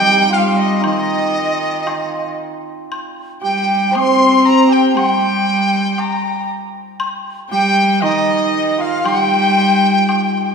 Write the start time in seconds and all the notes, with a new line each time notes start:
Already playing: G3 C4 D#4 F4 G5
0.03 G4
0.10 G4
0.17 G4
0.30 F4 F5
0.34 F5
0.55 D#5 F5
0.60 D#5
0.76 F5
0.81 D#4 D#5, high woodblock
0.86 D#3 D#5
1.86 F4, high woodblock, low woodblock
2.92 high woodblock
3.41 G3 G4 G5
3.91 C5 C6
3.95 C4 C5 D#6, high woodblock, low woodblock
4.00 C6
4.06 C5
4.17 C5
4.22 C5
4.30 C5
4.42 C5 A#5 C6
4.49 C5 A#5
4.67 G4
4.72 G5
4.89 A#5
4.95 G3 G4 F#5 G5, high woodblock
5.08 G5
5.98 A#5, high woodblock, low woodblock
7.00 high woodblock
7.50 G3 G4 G5
8.02 D#3 D#4 D#5, high woodblock, low woodblock
8.78 F4 F5
9.04 G3 G4 G5, high woodblock
10.09 high woodblock, low woodblock